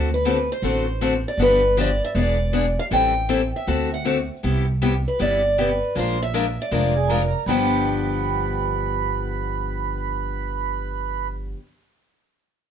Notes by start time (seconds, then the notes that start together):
Already playing: D2
0.14 B4
0.25 D3 A3 C4 F#4 A4
0.52 C5
0.62 A1 D3 A3 C4 F#4 A4
1.01 D3 A3 C4 F#4 A4
1.28 D5
1.38 G1 D3 F3 B3 D4 G4
1.42 B4
1.77 D3 F3 B3 D4 G4 D5
2.04 E5
2.15 E1 E3 B3 D4 G#4 D5
2.53 E3 B3 D4 G#4
2.79 F5
2.91 A1 E3 G3 C4 E4 A4 G5
3.29 E3 G3 C4 E4 A4
3.56 E5
3.67 D2 D3 A3 C4 F#4 A4
3.94 F#5
4.05 D3 A3 C4 F#4 A4
4.43 C2 C3 G3 B3 E4 G4
4.82 C3 G3 B3 E4 G4
5.08 B4
5.19 G1 C3 G3 B3 E4 G4 D5
5.58 C3 G3 B3 E4 G4 B4
5.95 A#1 F3 G#3 D4 F4 A#4 C5
6.22 E5
6.34 F3 G#3 D4 F4 A#4
6.62 D5
6.71 F1 F3 G#3 D4 F4 A#4
6.96 G#4
7.09 F3 G#3 D4 F4 A#4
7.46 G1 G2 D3 F3 B3 D4 G4 B4 G5